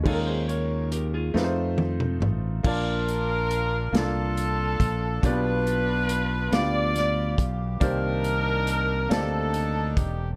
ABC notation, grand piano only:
X:1
M:6/8
L:1/8
Q:3/8=46
K:Ebmix
V:1 name="Grand piano"
[A,DEF=AB]2 z [=A,CEF_c=c]2 z | [K:Bb] [B,DFda]2 z [B,DFAf]2 z | [B,=B,DFGd]2 z [B,DFGf]2 z | [E,B,Gcd]2 z [B,CGAd]2 z |]
V:2 name="Grand piano" clef=bass
E,3 z3 | [K:Bb] B,,3 z3 | =B,,3 z3 | C,3 z3 |]